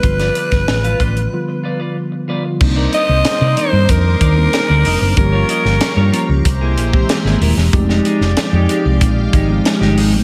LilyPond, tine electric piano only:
\new Staff \with { instrumentName = "Tine electric piano" } { \time 4/4 \key g \minor \tempo 4 = 94 <d f g b f'>4~ <d f g b f'>16 r8. <d f g b f'>4 r8 <d f g b f'>16 r16 | \key c \minor <g bes c' d' ees'>4 r8 <ees g bes c' d'>8. r8 <g bes c' d' ees'>8. r8 | <f g bes des' g'>4 r8 <f g bes des' f'>8 r8. <e aes bes c' g'>8. r8 | <f aes c' ees' g'>4 r8 <f aes c' ees' g'>8. r8 <f aes c' ees' g'>8. r8 | }